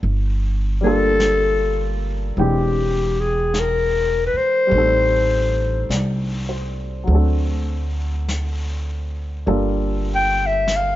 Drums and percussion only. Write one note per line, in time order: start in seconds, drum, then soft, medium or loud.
0.03 brush sweep soft
1.20 brush sweep soft
1.20 snare soft
1.20 hi-hat pedal soft
2.38 brush sweep soft
3.54 brush sweep soft
3.54 snare soft
3.54 hi-hat pedal soft
4.72 brush sweep soft
5.90 brush sweep soft
5.90 snare soft
5.90 hi-hat pedal medium
7.08 brush sweep soft
8.28 brush sweep soft
8.28 snare soft
8.28 hi-hat pedal soft
9.50 brush sweep soft
10.68 brush sweep soft
10.68 snare soft
10.68 hi-hat pedal soft